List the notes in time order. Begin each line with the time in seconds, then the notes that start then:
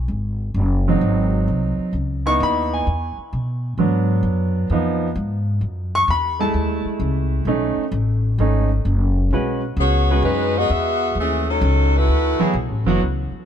0.08 G#1
0.54 F#1
0.88 F#3 C4 D#4
1.01 G#1
1.48 C2
1.78 muted upright bass stroke
1.93 C#2
2.26 B3 D#4 E4 C#6
2.40 D#2 B5
2.74 G#5
2.87 E2
3.17 muted upright bass stroke
3.33 B2
3.78 G#2 F#3 B3 D4
4.23 F#2
4.70 F2 F3 B3 D#4
5.15 G#2
5.61 F#2
5.95 C#6
6.08 E2 B5
6.39 G#3 A3 E4 A5
6.54 D#2
6.85 muted upright bass stroke
7.00 C#2
7.45 B1 A3 C#4 D#4
7.77 muted upright bass stroke
7.92 A1
8.38 G#1 A3 C#4 D#4
8.85 F#1
9.31 B1 G#3 C#4 F#4 B4
9.77 C#2 B3 F#4 G#4 C#5
10.10 G#3 C#4 F#4 B4
10.22 F#2 G#3 D#4 F#4 B4
10.57 B3 F#4 G#4 D#5
10.69 E2 B3 F#4 G#4 E5
11.15 D#2
11.20 E3 A3 C#4 G#4
11.50 F#3 C#4 D#4 A4
11.61 C#2
11.96 A3 E4 F#4 B4
12.08 D2
12.40 F#3 B3 E4 G#4, muted upright bass stroke
12.53 B1
12.69 A1
12.85 F#1 F#3 B3 E4 F#4
13.00 C#2
13.32 muted upright bass stroke